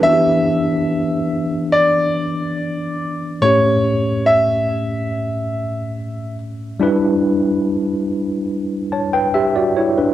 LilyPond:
<<
  \new Staff \with { instrumentName = "Grand piano" } { \time 4/4 \key e \dorian \tempo 4 = 71 e''2 d''2 | cis''4 e''2~ e''8 r8 | r1 | }
  \new Staff \with { instrumentName = "Tine electric piano" } { \time 4/4 \key e \dorian << { b'16 r2. r8. | r1 | r2 r8 <cis'' a''>16 <b' g''>16 <g' e''>16 <fis' d''>16 <e' cis''>16 <d' b'>16 | } \\ { <e b d' fis' g'>1 | <a, a cis' g'>1 | <g d' e' b'>1 | } >> }
>>